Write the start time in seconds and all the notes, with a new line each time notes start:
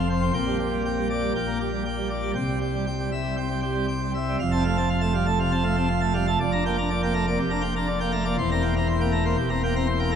Already playing: F1 F2
0.10 C5
0.22 C4
0.34 A#1 A#2 G5
0.47 G3
0.59 G4
0.72 G3
0.85 G5
0.97 G3
1.10 D5
1.22 G3
1.35 A#1 A#2 G5
1.47 A#3
1.61 G4
1.72 G3
1.85 G5
1.97 G3
2.10 D5
2.23 G3
2.35 C2 C3 G5
2.49 G3
2.62 G4
2.75 G3
2.87 G5
2.99 G3
3.12 E5
3.24 G3
3.37 C4 G5
3.50 G3
3.62 G4
3.74 G3
3.88 G5
4.03 G3
4.15 E5
4.29 G3
4.39 F1 F2 F5
4.52 C4 A5
4.65 A3 F5
4.77 C4 A5
4.89 F5
5.01 A3 A5
5.14 G3 F5
5.26 A3 A5
5.39 C3 F5
5.52 C4 A5
5.63 A3 F5
5.76 C4 A5
5.88 F5
6.01 A3 A5
6.14 G3 F5
6.27 A3 A5
6.40 F1 F2 D5
6.52 D4 A#5
6.65 A#3 G5
6.78 D4 A#5
6.90 D5
7.03 A#3 G5
7.14 A3 A#5
7.27 A#3 D5
7.39 F1 F2 G4
7.50 D4 A#5
7.61 A#3 G5
7.76 D4 A#5
7.87 D5
8.00 A#3 G5
8.12 A3 A#5
8.25 A#3 D5
8.38 E1 E2 C5
8.51 C4 A#5
8.62 A#3 G5
8.76 C4 A#5
8.88 C5
9.00 A#3 G5
9.11 A3 A#5
9.25 A#3 C5
9.37 E1 E2 G4
9.50 C4 A#5
9.63 A#3 G5
9.76 C4 A#5
9.87 C5
9.99 A#3 G5
10.11 A3 A#5